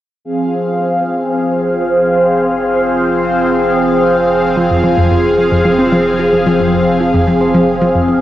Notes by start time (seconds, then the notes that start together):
0.24 F1 F3 C4 G#4 C5 F5
4.57 F3
4.71 F2
4.84 F3
4.97 F2
5.11 F2
5.38 F3
5.52 F2
5.65 F3
5.79 C4
5.92 F3
6.19 F3
6.33 F2
6.46 F3
6.60 F2
6.73 F2
7.00 F3
7.14 F2
7.27 F3
7.41 C4
7.54 F3
7.81 F3
7.95 F2
8.08 F3